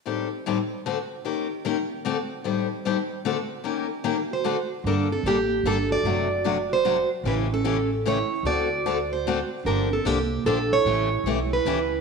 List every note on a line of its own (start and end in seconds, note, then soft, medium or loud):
0.06 0.27 A2 soft
0.06 0.27 D#3 soft
0.06 0.27 G3 medium
0.06 0.27 C4 soft
0.06 0.27 G4 medium
0.06 0.27 A4 medium
0.46 0.57 A2 medium
0.46 0.57 D#3 medium
0.46 0.57 G3 medium
0.46 0.57 C4 medium
0.46 0.57 G4 medium
0.46 0.57 A4 medium
0.86 0.97 D3 medium
0.86 0.97 A3 medium
0.86 0.97 C4 medium
0.86 0.97 F#4 medium
0.86 0.97 A4 medium
1.25 1.46 D#3 medium
1.25 1.46 A#3 soft
1.25 1.47 C#4 medium
1.25 1.47 G4 medium
1.25 1.47 A#4 medium
1.65 1.76 D#3 medium
1.65 1.76 A#3 medium
1.65 1.76 C#4 medium
1.65 1.76 G4 medium
1.65 1.77 A#4 medium
2.05 2.16 D3 medium
2.05 2.16 A3 medium
2.05 2.16 C4 medium
2.05 2.16 F#4 medium
2.05 2.17 A4 medium
2.44 2.66 A2 soft
2.44 2.66 D#3 medium
2.44 2.66 G3 medium
2.44 2.66 C4 medium
2.44 2.66 G4 medium
2.44 2.67 A4 medium
2.85 2.96 A2 medium
2.85 2.96 D#3 medium
2.85 2.96 G3 medium
2.85 2.97 C4 medium
2.85 2.97 G4 medium
2.85 2.97 A4 medium
3.25 3.36 D3 medium
3.25 3.36 A3 medium
3.25 3.36 C4 medium
3.25 3.37 F#4 medium
3.25 3.37 A4 medium
3.64 3.86 D#3 medium
3.64 3.86 A#3 soft
3.64 3.86 C#4 medium
3.64 3.86 G4 medium
3.64 3.86 A#4 medium
4.04 4.15 D#3 medium
4.04 4.16 A#3 medium
4.04 4.16 C#4 medium
4.04 4.16 G4 medium
4.04 4.16 A#4 medium
4.31 4.67 F#4 medium
4.31 4.69 C5 medium
4.44 4.56 D3 medium
4.44 4.56 A3 medium
4.44 4.56 C4 medium
4.44 4.56 F#4 medium
4.44 4.56 A4 medium
4.84 5.16 G1 medium
4.84 5.07 D3 medium
4.84 5.07 G3 medium
4.84 5.07 A#3 medium
4.84 4.96 D4 medium
4.84 5.07 D4 medium
4.84 5.07 A4 medium
4.84 4.94 A#4 medium
5.12 5.25 A4 medium
5.23 5.58 A1 medium
5.23 5.36 D3 medium
5.23 5.37 G3 medium
5.23 5.62 A#3 medium
5.23 5.37 A#3 medium
5.23 5.37 D4 medium
5.23 5.37 A4 medium
5.28 5.67 G4 medium
5.63 5.98 G1 medium
5.63 5.76 D3 medium
5.63 5.77 G3 medium
5.63 5.77 A#3 medium
5.63 5.88 D4 medium
5.63 5.77 D4 medium
5.63 5.77 A4 medium
5.67 5.92 A4 medium
5.89 6.66 F#4 medium
5.89 6.67 D5 medium
6.03 7.00 F#1 medium
6.03 6.26 C3 medium
6.03 6.26 F#3 medium
6.03 6.26 A3 medium
6.03 6.27 D4 medium
6.03 6.27 F#4 medium
6.44 6.56 C3 medium
6.44 6.56 F#3 medium
6.44 6.56 A3 medium
6.44 6.56 D4 medium
6.44 6.57 F#4 medium
6.70 7.07 F#4 medium
6.70 7.09 C5 medium
6.85 6.96 C3 medium
6.85 6.96 F#3 medium
6.85 6.96 A3 medium
6.85 6.96 D4 medium
6.85 6.96 F#4 medium
7.24 8.20 A1 medium
7.24 7.47 C#3 medium
7.24 7.47 E3 medium
7.24 7.47 A3 medium
7.24 7.47 C#4 medium
7.24 7.37 E4 medium
7.24 7.47 G4 medium
7.24 7.34 B4 medium
7.50 7.87 C#4 medium
7.50 7.89 A4 medium
7.64 7.76 C#3 medium
7.64 7.76 E3 medium
7.64 7.76 A3 medium
7.64 7.76 C#4 medium
7.64 7.76 G4 medium
8.05 8.17 C#3 medium
8.05 8.17 E3 medium
8.05 8.17 A3 medium
8.05 8.17 C#4 medium
8.05 8.42 E4 medium
8.05 8.17 G4 medium
8.05 8.44 C#5 medium
8.43 9.40 D2 medium
8.43 8.67 D3 medium
8.43 8.67 A3 medium
8.43 8.67 C4 medium
8.43 9.07 F#4 medium
8.43 8.67 F#4 medium
8.43 8.67 A4 medium
8.43 9.12 D5 medium
8.86 8.97 D3 medium
8.86 8.97 A3 medium
8.86 8.97 C4 medium
8.86 8.97 F#4 medium
8.86 8.98 A4 medium
9.10 9.48 F#4 medium
9.10 9.49 C5 medium
9.27 9.38 D3 medium
9.27 9.38 A3 medium
9.27 9.38 C4 medium
9.27 9.38 F#4 medium
9.27 9.38 A4 medium
9.64 9.97 G1 medium
9.64 9.88 D3 medium
9.64 9.88 F3 medium
9.64 9.88 A#3 medium
9.64 9.88 D4 medium
9.64 9.88 G4 medium
9.64 9.92 A#4 medium
9.90 10.04 C4 medium
9.90 10.07 A4 medium
10.04 10.39 C2 medium
10.04 10.17 D3 medium
10.04 10.17 F3 medium
10.04 10.45 A#3 medium
10.04 10.17 A#3 medium
10.04 10.17 D4 medium
10.04 10.46 G4 medium
10.04 10.18 G4 medium
10.45 10.79 A#1 medium
10.45 10.57 D3 medium
10.45 10.57 F3 medium
10.45 10.58 A#3 medium
10.45 10.69 D4 medium
10.45 10.58 D4 medium
10.45 10.58 G4 medium
10.45 10.72 A4 medium
10.71 11.48 E4 medium
10.71 11.53 C#5 loud
10.85 11.17 A1 medium
10.85 11.08 C#3 medium
10.85 11.08 E3 medium
10.85 11.08 A3 medium
10.85 11.08 C#4 medium
10.85 11.08 G4 medium
11.24 11.59 B1 medium
11.24 11.38 C#3 medium
11.24 11.38 E3 medium
11.24 11.38 A3 medium
11.24 11.38 C#4 medium
11.24 11.38 G4 medium
11.51 12.01 E4 medium
11.51 12.01 B4 medium
11.65 12.00 C#2 medium
11.65 11.78 C#3 medium
11.65 11.78 E3 medium
11.65 11.78 A3 medium
11.65 11.78 C#4 medium
11.65 11.78 G4 medium